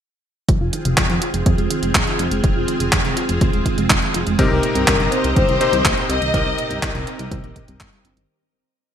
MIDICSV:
0, 0, Header, 1, 7, 480
1, 0, Start_track
1, 0, Key_signature, -4, "minor"
1, 0, Tempo, 487805
1, 478, Time_signature, 4, 2, 24, 8
1, 8806, End_track
2, 0, Start_track
2, 0, Title_t, "Violin section"
2, 0, Program_c, 0, 48
2, 4320, Note_on_c, 0, 70, 90
2, 5000, Note_off_c, 0, 70, 0
2, 5041, Note_on_c, 0, 72, 94
2, 5263, Note_off_c, 0, 72, 0
2, 5280, Note_on_c, 0, 72, 108
2, 5960, Note_off_c, 0, 72, 0
2, 5999, Note_on_c, 0, 75, 116
2, 6919, Note_off_c, 0, 75, 0
2, 8806, End_track
3, 0, Start_track
3, 0, Title_t, "String machine"
3, 0, Program_c, 1, 50
3, 479, Note_on_c, 1, 60, 78
3, 479, Note_on_c, 1, 65, 71
3, 479, Note_on_c, 1, 68, 86
3, 4280, Note_off_c, 1, 65, 0
3, 4280, Note_off_c, 1, 68, 0
3, 4319, Note_on_c, 1, 67, 73
3, 4319, Note_on_c, 1, 70, 73
3, 4319, Note_on_c, 1, 75, 85
3, 8119, Note_off_c, 1, 60, 0
3, 8120, Note_off_c, 1, 67, 0
3, 8120, Note_off_c, 1, 70, 0
3, 8120, Note_off_c, 1, 75, 0
3, 8806, End_track
4, 0, Start_track
4, 0, Title_t, "Electric grand piano"
4, 0, Program_c, 2, 2
4, 4317, Note_on_c, 2, 48, 95
4, 4317, Note_on_c, 2, 60, 87
4, 4317, Note_on_c, 2, 63, 91
4, 4317, Note_on_c, 2, 67, 89
4, 4317, Note_on_c, 2, 70, 108
4, 5489, Note_off_c, 2, 48, 0
4, 5489, Note_off_c, 2, 60, 0
4, 5489, Note_off_c, 2, 63, 0
4, 5489, Note_off_c, 2, 67, 0
4, 5489, Note_off_c, 2, 70, 0
4, 5517, Note_on_c, 2, 48, 96
4, 5517, Note_on_c, 2, 60, 84
4, 5517, Note_on_c, 2, 67, 81
4, 5518, Note_on_c, 2, 63, 85
4, 5518, Note_on_c, 2, 72, 102
4, 6209, Note_off_c, 2, 48, 0
4, 6209, Note_off_c, 2, 60, 0
4, 6209, Note_off_c, 2, 63, 0
4, 6209, Note_off_c, 2, 67, 0
4, 6209, Note_off_c, 2, 72, 0
4, 6237, Note_on_c, 2, 48, 86
4, 6237, Note_on_c, 2, 60, 82
4, 6237, Note_on_c, 2, 63, 81
4, 6237, Note_on_c, 2, 67, 83
4, 6237, Note_on_c, 2, 70, 99
4, 7889, Note_off_c, 2, 48, 0
4, 7889, Note_off_c, 2, 60, 0
4, 7889, Note_off_c, 2, 63, 0
4, 7889, Note_off_c, 2, 67, 0
4, 7889, Note_off_c, 2, 70, 0
4, 8806, End_track
5, 0, Start_track
5, 0, Title_t, "Synth arpeggio sound"
5, 0, Program_c, 3, 84
5, 478, Note_on_c, 3, 53, 79
5, 559, Note_off_c, 3, 53, 0
5, 597, Note_on_c, 3, 65, 75
5, 712, Note_off_c, 3, 65, 0
5, 718, Note_on_c, 3, 51, 76
5, 799, Note_off_c, 3, 51, 0
5, 838, Note_on_c, 3, 48, 105
5, 919, Note_off_c, 3, 48, 0
5, 957, Note_on_c, 3, 53, 90
5, 1038, Note_off_c, 3, 53, 0
5, 1077, Note_on_c, 3, 51, 76
5, 1126, Note_off_c, 3, 51, 0
5, 1198, Note_on_c, 3, 65, 75
5, 1279, Note_off_c, 3, 65, 0
5, 1318, Note_on_c, 3, 53, 71
5, 1426, Note_off_c, 3, 53, 0
5, 1438, Note_on_c, 3, 53, 85
5, 1519, Note_off_c, 3, 53, 0
5, 1558, Note_on_c, 3, 56, 76
5, 1639, Note_off_c, 3, 56, 0
5, 1677, Note_on_c, 3, 51, 78
5, 1758, Note_off_c, 3, 51, 0
5, 1798, Note_on_c, 3, 56, 78
5, 1912, Note_off_c, 3, 56, 0
5, 1917, Note_on_c, 3, 53, 84
5, 1998, Note_off_c, 3, 53, 0
5, 2038, Note_on_c, 3, 51, 80
5, 2087, Note_off_c, 3, 51, 0
5, 2159, Note_on_c, 3, 65, 75
5, 2239, Note_off_c, 3, 65, 0
5, 2279, Note_on_c, 3, 56, 77
5, 2393, Note_off_c, 3, 56, 0
5, 2399, Note_on_c, 3, 53, 84
5, 2479, Note_off_c, 3, 53, 0
5, 2519, Note_on_c, 3, 65, 72
5, 2633, Note_off_c, 3, 65, 0
5, 2640, Note_on_c, 3, 51, 76
5, 2720, Note_off_c, 3, 51, 0
5, 2759, Note_on_c, 3, 48, 104
5, 2839, Note_off_c, 3, 48, 0
5, 2880, Note_on_c, 3, 53, 86
5, 2960, Note_off_c, 3, 53, 0
5, 2999, Note_on_c, 3, 51, 74
5, 3047, Note_off_c, 3, 51, 0
5, 3120, Note_on_c, 3, 65, 75
5, 3200, Note_off_c, 3, 65, 0
5, 3240, Note_on_c, 3, 53, 72
5, 3347, Note_off_c, 3, 53, 0
5, 3359, Note_on_c, 3, 53, 83
5, 3439, Note_off_c, 3, 53, 0
5, 3479, Note_on_c, 3, 56, 73
5, 3559, Note_off_c, 3, 56, 0
5, 3599, Note_on_c, 3, 51, 77
5, 3679, Note_off_c, 3, 51, 0
5, 3718, Note_on_c, 3, 56, 73
5, 3832, Note_off_c, 3, 56, 0
5, 3838, Note_on_c, 3, 53, 84
5, 3919, Note_off_c, 3, 53, 0
5, 3959, Note_on_c, 3, 51, 84
5, 4007, Note_off_c, 3, 51, 0
5, 4078, Note_on_c, 3, 65, 77
5, 4159, Note_off_c, 3, 65, 0
5, 4199, Note_on_c, 3, 56, 81
5, 4313, Note_off_c, 3, 56, 0
5, 4319, Note_on_c, 3, 48, 82
5, 4399, Note_off_c, 3, 48, 0
5, 4438, Note_on_c, 3, 60, 73
5, 4552, Note_off_c, 3, 60, 0
5, 4559, Note_on_c, 3, 46, 74
5, 4639, Note_off_c, 3, 46, 0
5, 4679, Note_on_c, 3, 43, 104
5, 4759, Note_off_c, 3, 43, 0
5, 4800, Note_on_c, 3, 48, 84
5, 4880, Note_off_c, 3, 48, 0
5, 4919, Note_on_c, 3, 46, 74
5, 4967, Note_off_c, 3, 46, 0
5, 5038, Note_on_c, 3, 60, 74
5, 5119, Note_off_c, 3, 60, 0
5, 5159, Note_on_c, 3, 48, 74
5, 5267, Note_off_c, 3, 48, 0
5, 5278, Note_on_c, 3, 48, 82
5, 5359, Note_off_c, 3, 48, 0
5, 5398, Note_on_c, 3, 51, 75
5, 5479, Note_off_c, 3, 51, 0
5, 5518, Note_on_c, 3, 46, 79
5, 5599, Note_off_c, 3, 46, 0
5, 5638, Note_on_c, 3, 51, 73
5, 5752, Note_off_c, 3, 51, 0
5, 5758, Note_on_c, 3, 48, 81
5, 5839, Note_off_c, 3, 48, 0
5, 5877, Note_on_c, 3, 46, 81
5, 5926, Note_off_c, 3, 46, 0
5, 5997, Note_on_c, 3, 60, 72
5, 6078, Note_off_c, 3, 60, 0
5, 6117, Note_on_c, 3, 51, 82
5, 6232, Note_off_c, 3, 51, 0
5, 6237, Note_on_c, 3, 48, 81
5, 6318, Note_off_c, 3, 48, 0
5, 6358, Note_on_c, 3, 60, 76
5, 6472, Note_off_c, 3, 60, 0
5, 6478, Note_on_c, 3, 46, 74
5, 6559, Note_off_c, 3, 46, 0
5, 6599, Note_on_c, 3, 43, 102
5, 6679, Note_off_c, 3, 43, 0
5, 6719, Note_on_c, 3, 48, 86
5, 6799, Note_off_c, 3, 48, 0
5, 6839, Note_on_c, 3, 46, 77
5, 6887, Note_off_c, 3, 46, 0
5, 6959, Note_on_c, 3, 60, 74
5, 7039, Note_off_c, 3, 60, 0
5, 7078, Note_on_c, 3, 48, 73
5, 7186, Note_off_c, 3, 48, 0
5, 7197, Note_on_c, 3, 48, 82
5, 7278, Note_off_c, 3, 48, 0
5, 7319, Note_on_c, 3, 51, 75
5, 7399, Note_off_c, 3, 51, 0
5, 7438, Note_on_c, 3, 46, 102
5, 7486, Note_off_c, 3, 46, 0
5, 7558, Note_on_c, 3, 43, 104
5, 7607, Note_off_c, 3, 43, 0
5, 7678, Note_on_c, 3, 55, 81
5, 7759, Note_off_c, 3, 55, 0
5, 7799, Note_on_c, 3, 55, 84
5, 7879, Note_off_c, 3, 55, 0
5, 7918, Note_on_c, 3, 60, 75
5, 7999, Note_off_c, 3, 60, 0
5, 8037, Note_on_c, 3, 51, 109
5, 8118, Note_off_c, 3, 51, 0
5, 8806, End_track
6, 0, Start_track
6, 0, Title_t, "Analog synth bass"
6, 0, Program_c, 4, 38
6, 478, Note_on_c, 4, 29, 97
6, 573, Note_off_c, 4, 29, 0
6, 597, Note_on_c, 4, 29, 77
6, 693, Note_off_c, 4, 29, 0
6, 837, Note_on_c, 4, 29, 79
6, 933, Note_off_c, 4, 29, 0
6, 958, Note_on_c, 4, 41, 103
6, 1053, Note_off_c, 4, 41, 0
6, 1078, Note_on_c, 4, 41, 80
6, 1173, Note_off_c, 4, 41, 0
6, 1317, Note_on_c, 4, 29, 80
6, 1413, Note_off_c, 4, 29, 0
6, 1438, Note_on_c, 4, 41, 107
6, 1533, Note_off_c, 4, 41, 0
6, 1558, Note_on_c, 4, 29, 77
6, 1653, Note_off_c, 4, 29, 0
6, 1798, Note_on_c, 4, 29, 85
6, 1893, Note_off_c, 4, 29, 0
6, 1917, Note_on_c, 4, 27, 95
6, 2013, Note_off_c, 4, 27, 0
6, 2158, Note_on_c, 4, 29, 94
6, 2253, Note_off_c, 4, 29, 0
6, 2278, Note_on_c, 4, 29, 78
6, 2373, Note_off_c, 4, 29, 0
6, 2398, Note_on_c, 4, 29, 99
6, 2493, Note_off_c, 4, 29, 0
6, 2518, Note_on_c, 4, 29, 72
6, 2613, Note_off_c, 4, 29, 0
6, 2758, Note_on_c, 4, 29, 79
6, 2853, Note_off_c, 4, 29, 0
6, 2878, Note_on_c, 4, 29, 103
6, 2973, Note_off_c, 4, 29, 0
6, 2998, Note_on_c, 4, 29, 77
6, 3093, Note_off_c, 4, 29, 0
6, 3238, Note_on_c, 4, 29, 81
6, 3333, Note_off_c, 4, 29, 0
6, 3358, Note_on_c, 4, 29, 104
6, 3453, Note_off_c, 4, 29, 0
6, 3478, Note_on_c, 4, 27, 77
6, 3573, Note_off_c, 4, 27, 0
6, 3718, Note_on_c, 4, 29, 81
6, 3813, Note_off_c, 4, 29, 0
6, 3838, Note_on_c, 4, 29, 96
6, 3933, Note_off_c, 4, 29, 0
6, 4078, Note_on_c, 4, 29, 93
6, 4173, Note_off_c, 4, 29, 0
6, 4199, Note_on_c, 4, 29, 78
6, 4293, Note_off_c, 4, 29, 0
6, 4318, Note_on_c, 4, 36, 98
6, 4413, Note_off_c, 4, 36, 0
6, 4439, Note_on_c, 4, 36, 77
6, 4534, Note_off_c, 4, 36, 0
6, 4678, Note_on_c, 4, 36, 79
6, 4773, Note_off_c, 4, 36, 0
6, 4798, Note_on_c, 4, 31, 98
6, 4893, Note_off_c, 4, 31, 0
6, 4918, Note_on_c, 4, 31, 77
6, 5013, Note_off_c, 4, 31, 0
6, 5158, Note_on_c, 4, 36, 83
6, 5253, Note_off_c, 4, 36, 0
6, 5278, Note_on_c, 4, 31, 102
6, 5373, Note_off_c, 4, 31, 0
6, 5398, Note_on_c, 4, 36, 75
6, 5493, Note_off_c, 4, 36, 0
6, 5638, Note_on_c, 4, 36, 82
6, 5733, Note_off_c, 4, 36, 0
6, 5758, Note_on_c, 4, 34, 98
6, 5853, Note_off_c, 4, 34, 0
6, 5998, Note_on_c, 4, 36, 95
6, 6093, Note_off_c, 4, 36, 0
6, 6118, Note_on_c, 4, 36, 76
6, 6213, Note_off_c, 4, 36, 0
6, 6238, Note_on_c, 4, 36, 98
6, 6333, Note_off_c, 4, 36, 0
6, 6358, Note_on_c, 4, 36, 76
6, 6453, Note_off_c, 4, 36, 0
6, 6598, Note_on_c, 4, 36, 82
6, 6693, Note_off_c, 4, 36, 0
6, 6718, Note_on_c, 4, 36, 101
6, 6813, Note_off_c, 4, 36, 0
6, 6838, Note_on_c, 4, 36, 76
6, 6933, Note_off_c, 4, 36, 0
6, 7078, Note_on_c, 4, 36, 84
6, 7173, Note_off_c, 4, 36, 0
6, 7198, Note_on_c, 4, 36, 106
6, 7293, Note_off_c, 4, 36, 0
6, 7318, Note_on_c, 4, 34, 75
6, 7413, Note_off_c, 4, 34, 0
6, 7557, Note_on_c, 4, 36, 84
6, 7653, Note_off_c, 4, 36, 0
6, 7678, Note_on_c, 4, 31, 92
6, 7773, Note_off_c, 4, 31, 0
6, 7917, Note_on_c, 4, 31, 96
6, 8013, Note_off_c, 4, 31, 0
6, 8037, Note_on_c, 4, 31, 78
6, 8133, Note_off_c, 4, 31, 0
6, 8806, End_track
7, 0, Start_track
7, 0, Title_t, "Drums"
7, 478, Note_on_c, 9, 36, 117
7, 478, Note_on_c, 9, 42, 80
7, 576, Note_off_c, 9, 36, 0
7, 576, Note_off_c, 9, 42, 0
7, 718, Note_on_c, 9, 42, 84
7, 816, Note_off_c, 9, 42, 0
7, 838, Note_on_c, 9, 42, 57
7, 936, Note_off_c, 9, 42, 0
7, 958, Note_on_c, 9, 36, 124
7, 958, Note_on_c, 9, 39, 111
7, 958, Note_on_c, 9, 42, 81
7, 1056, Note_off_c, 9, 36, 0
7, 1057, Note_off_c, 9, 39, 0
7, 1057, Note_off_c, 9, 42, 0
7, 1078, Note_on_c, 9, 42, 37
7, 1177, Note_off_c, 9, 42, 0
7, 1198, Note_on_c, 9, 42, 77
7, 1296, Note_off_c, 9, 42, 0
7, 1318, Note_on_c, 9, 42, 53
7, 1416, Note_off_c, 9, 42, 0
7, 1438, Note_on_c, 9, 36, 118
7, 1438, Note_on_c, 9, 42, 85
7, 1536, Note_off_c, 9, 36, 0
7, 1536, Note_off_c, 9, 42, 0
7, 1558, Note_on_c, 9, 42, 37
7, 1656, Note_off_c, 9, 42, 0
7, 1678, Note_on_c, 9, 42, 83
7, 1776, Note_off_c, 9, 42, 0
7, 1798, Note_on_c, 9, 42, 55
7, 1896, Note_off_c, 9, 42, 0
7, 1918, Note_on_c, 9, 36, 111
7, 1918, Note_on_c, 9, 39, 113
7, 1918, Note_on_c, 9, 42, 81
7, 2016, Note_off_c, 9, 36, 0
7, 2016, Note_off_c, 9, 39, 0
7, 2016, Note_off_c, 9, 42, 0
7, 2038, Note_on_c, 9, 42, 39
7, 2136, Note_off_c, 9, 42, 0
7, 2157, Note_on_c, 9, 42, 81
7, 2255, Note_off_c, 9, 42, 0
7, 2277, Note_on_c, 9, 42, 53
7, 2376, Note_off_c, 9, 42, 0
7, 2398, Note_on_c, 9, 36, 121
7, 2398, Note_on_c, 9, 42, 79
7, 2496, Note_off_c, 9, 36, 0
7, 2496, Note_off_c, 9, 42, 0
7, 2638, Note_on_c, 9, 42, 83
7, 2736, Note_off_c, 9, 42, 0
7, 2758, Note_on_c, 9, 42, 58
7, 2856, Note_off_c, 9, 42, 0
7, 2877, Note_on_c, 9, 39, 123
7, 2877, Note_on_c, 9, 42, 78
7, 2878, Note_on_c, 9, 36, 125
7, 2976, Note_off_c, 9, 39, 0
7, 2976, Note_off_c, 9, 42, 0
7, 2977, Note_off_c, 9, 36, 0
7, 2998, Note_on_c, 9, 42, 39
7, 3096, Note_off_c, 9, 42, 0
7, 3118, Note_on_c, 9, 42, 79
7, 3216, Note_off_c, 9, 42, 0
7, 3238, Note_on_c, 9, 42, 57
7, 3336, Note_off_c, 9, 42, 0
7, 3358, Note_on_c, 9, 36, 122
7, 3358, Note_on_c, 9, 42, 84
7, 3456, Note_off_c, 9, 36, 0
7, 3456, Note_off_c, 9, 42, 0
7, 3478, Note_on_c, 9, 42, 38
7, 3576, Note_off_c, 9, 42, 0
7, 3598, Note_on_c, 9, 36, 64
7, 3598, Note_on_c, 9, 42, 82
7, 3696, Note_off_c, 9, 36, 0
7, 3697, Note_off_c, 9, 42, 0
7, 3718, Note_on_c, 9, 42, 53
7, 3816, Note_off_c, 9, 42, 0
7, 3838, Note_on_c, 9, 36, 119
7, 3838, Note_on_c, 9, 39, 116
7, 3838, Note_on_c, 9, 42, 82
7, 3936, Note_off_c, 9, 39, 0
7, 3936, Note_off_c, 9, 42, 0
7, 3937, Note_off_c, 9, 36, 0
7, 3958, Note_on_c, 9, 42, 39
7, 4056, Note_off_c, 9, 42, 0
7, 4078, Note_on_c, 9, 42, 77
7, 4176, Note_off_c, 9, 42, 0
7, 4198, Note_on_c, 9, 42, 55
7, 4296, Note_off_c, 9, 42, 0
7, 4318, Note_on_c, 9, 36, 124
7, 4318, Note_on_c, 9, 42, 82
7, 4416, Note_off_c, 9, 42, 0
7, 4417, Note_off_c, 9, 36, 0
7, 4558, Note_on_c, 9, 42, 79
7, 4656, Note_off_c, 9, 42, 0
7, 4678, Note_on_c, 9, 42, 56
7, 4777, Note_off_c, 9, 42, 0
7, 4798, Note_on_c, 9, 36, 126
7, 4798, Note_on_c, 9, 39, 126
7, 4798, Note_on_c, 9, 42, 82
7, 4897, Note_off_c, 9, 36, 0
7, 4897, Note_off_c, 9, 39, 0
7, 4897, Note_off_c, 9, 42, 0
7, 4919, Note_on_c, 9, 42, 37
7, 5017, Note_off_c, 9, 42, 0
7, 5038, Note_on_c, 9, 42, 80
7, 5137, Note_off_c, 9, 42, 0
7, 5159, Note_on_c, 9, 42, 54
7, 5257, Note_off_c, 9, 42, 0
7, 5278, Note_on_c, 9, 36, 127
7, 5279, Note_on_c, 9, 42, 81
7, 5377, Note_off_c, 9, 36, 0
7, 5377, Note_off_c, 9, 42, 0
7, 5399, Note_on_c, 9, 42, 39
7, 5497, Note_off_c, 9, 42, 0
7, 5519, Note_on_c, 9, 42, 84
7, 5617, Note_off_c, 9, 42, 0
7, 5639, Note_on_c, 9, 42, 52
7, 5737, Note_off_c, 9, 42, 0
7, 5758, Note_on_c, 9, 36, 123
7, 5759, Note_on_c, 9, 39, 124
7, 5759, Note_on_c, 9, 42, 78
7, 5856, Note_off_c, 9, 36, 0
7, 5857, Note_off_c, 9, 39, 0
7, 5857, Note_off_c, 9, 42, 0
7, 5879, Note_on_c, 9, 42, 37
7, 5977, Note_off_c, 9, 42, 0
7, 5999, Note_on_c, 9, 42, 78
7, 6097, Note_off_c, 9, 42, 0
7, 6119, Note_on_c, 9, 42, 54
7, 6218, Note_off_c, 9, 42, 0
7, 6238, Note_on_c, 9, 36, 127
7, 6239, Note_on_c, 9, 42, 78
7, 6336, Note_off_c, 9, 36, 0
7, 6337, Note_off_c, 9, 42, 0
7, 6479, Note_on_c, 9, 42, 77
7, 6577, Note_off_c, 9, 42, 0
7, 6599, Note_on_c, 9, 42, 52
7, 6697, Note_off_c, 9, 42, 0
7, 6718, Note_on_c, 9, 36, 123
7, 6719, Note_on_c, 9, 39, 123
7, 6719, Note_on_c, 9, 42, 73
7, 6817, Note_off_c, 9, 36, 0
7, 6817, Note_off_c, 9, 39, 0
7, 6817, Note_off_c, 9, 42, 0
7, 6839, Note_on_c, 9, 42, 36
7, 6937, Note_off_c, 9, 42, 0
7, 6958, Note_on_c, 9, 42, 75
7, 7057, Note_off_c, 9, 42, 0
7, 7078, Note_on_c, 9, 42, 51
7, 7177, Note_off_c, 9, 42, 0
7, 7198, Note_on_c, 9, 36, 123
7, 7198, Note_on_c, 9, 42, 80
7, 7296, Note_off_c, 9, 36, 0
7, 7296, Note_off_c, 9, 42, 0
7, 7318, Note_on_c, 9, 42, 35
7, 7417, Note_off_c, 9, 42, 0
7, 7438, Note_on_c, 9, 36, 64
7, 7438, Note_on_c, 9, 42, 77
7, 7537, Note_off_c, 9, 36, 0
7, 7537, Note_off_c, 9, 42, 0
7, 7559, Note_on_c, 9, 42, 51
7, 7657, Note_off_c, 9, 42, 0
7, 7678, Note_on_c, 9, 36, 117
7, 7679, Note_on_c, 9, 39, 126
7, 7679, Note_on_c, 9, 42, 78
7, 7777, Note_off_c, 9, 36, 0
7, 7777, Note_off_c, 9, 39, 0
7, 7777, Note_off_c, 9, 42, 0
7, 7799, Note_on_c, 9, 42, 35
7, 7898, Note_off_c, 9, 42, 0
7, 7919, Note_on_c, 9, 42, 73
7, 8017, Note_off_c, 9, 42, 0
7, 8039, Note_on_c, 9, 42, 51
7, 8138, Note_off_c, 9, 42, 0
7, 8806, End_track
0, 0, End_of_file